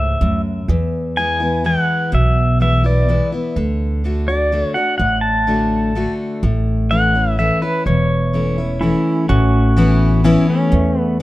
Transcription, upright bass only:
0.00 0.14 C#2 medium
0.21 0.62 D2 medium
0.68 1.74 E2 medium
2.13 3.19 B1 medium
3.56 4.62 D2 medium
4.99 6.05 A1 medium
6.43 7.49 A1 medium
7.86 8.92 E1 medium
9.29 10.35 A1 medium
10.73 11.22 E2 medium

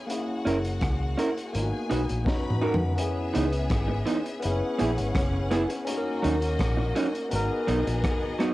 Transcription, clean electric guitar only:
0.45 0.56 C#4 medium
0.45 0.56 E4 medium
0.45 0.57 A#4 medium
1.18 1.28 C#4 medium
1.18 1.29 E4 loud
1.18 1.29 A#4 loud
1.90 2.01 D#4 medium
1.90 2.01 F#4 medium
1.90 2.01 B4 medium
2.61 2.73 D#4 medium
2.61 2.73 F#4 medium
2.61 2.73 A#4 medium
3.34 3.45 E3 medium
3.34 3.45 B3 medium
3.34 3.46 D#4 medium
3.88 muted clean electric guitar stroke medium
4.06 4.17 E3 loud
4.06 4.17 B3 medium
4.06 4.18 D#4 loud
4.79 4.89 B3 medium
4.79 4.90 E4 medium
4.79 4.90 G#4 loud
4.97 muted clean electric guitar stroke soft
5.51 5.62 B3 medium
5.51 5.62 E4 loud
5.51 5.62 G#4 loud
5.69 muted clean electric guitar stroke medium
6.22 6.34 F#3 medium
6.22 6.34 C#4 medium
6.22 6.34 D#4 medium
6.77 muted clean electric guitar stroke medium
6.95 7.06 F#3 loud
6.95 7.07 C#4 loud
6.95 7.07 D#4 loud
7.67 7.78 F#3 medium
7.67 7.79 B3 loud
7.67 7.79 D#4 loud
7.86 muted clean electric guitar stroke soft
8.39 8.50 F#3 loud
8.39 8.51 B3 loud
8.39 8.51 D#4 loud

